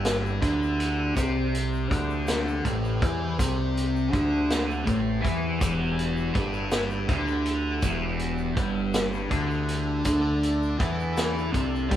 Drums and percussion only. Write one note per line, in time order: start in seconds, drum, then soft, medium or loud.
0.05 snare loud
0.05 closed hi-hat loud
0.05 shaker medium
0.25 shaker soft
0.42 kick medium
0.42 closed hi-hat medium
0.62 shaker soft
0.80 closed hi-hat medium
1.17 kick loud
1.17 closed hi-hat medium
1.17 shaker medium
1.55 closed hi-hat medium
1.73 shaker soft
1.91 kick loud
1.91 closed hi-hat medium
2.10 shaker soft
2.27 snare loud
2.27 closed hi-hat loud
2.27 shaker medium
2.48 shaker soft
2.65 kick medium
2.65 closed hi-hat medium
2.84 shaker soft
3.02 kick loud
3.02 closed hi-hat medium
3.02 shaker soft
3.39 kick loud
3.39 closed hi-hat loud
3.39 shaker medium
3.77 closed hi-hat medium
3.96 shaker soft
4.13 kick loud
4.13 closed hi-hat medium
4.13 shaker soft
4.50 snare loud
4.50 closed hi-hat medium
4.50 shaker medium
4.70 shaker soft
4.87 kick loud
4.87 closed hi-hat medium
4.87 shaker soft
5.25 kick loud
5.25 closed hi-hat medium
5.61 kick loud
5.61 closed hi-hat loud
5.61 shaker loud
5.99 closed hi-hat medium
6.17 shaker soft
6.35 kick loud
6.35 closed hi-hat medium
6.53 shaker soft
6.71 snare loud
6.71 closed hi-hat medium
6.71 shaker medium
6.90 shaker soft
7.09 kick loud
7.09 closed hi-hat medium
7.27 shaker soft
7.46 closed hi-hat medium
7.46 shaker soft
7.82 kick loud
7.82 closed hi-hat medium
7.82 shaker medium
8.19 closed hi-hat medium
8.38 shaker soft
8.57 kick loud
8.57 closed hi-hat medium
8.94 snare loud
8.94 closed hi-hat medium
8.94 shaker medium
9.13 shaker soft
9.31 kick medium
9.31 closed hi-hat medium
9.51 shaker soft
9.69 closed hi-hat medium
9.69 shaker soft
10.05 kick loud
10.05 closed hi-hat medium
10.05 shaker medium
10.43 closed hi-hat medium
10.62 shaker soft
10.80 kick loud
10.80 closed hi-hat medium
11.00 shaker soft
11.17 snare loud
11.17 closed hi-hat loud
11.17 shaker medium
11.38 shaker soft
11.54 kick loud
11.54 closed hi-hat medium
11.75 shaker soft
11.91 kick loud
11.91 closed hi-hat medium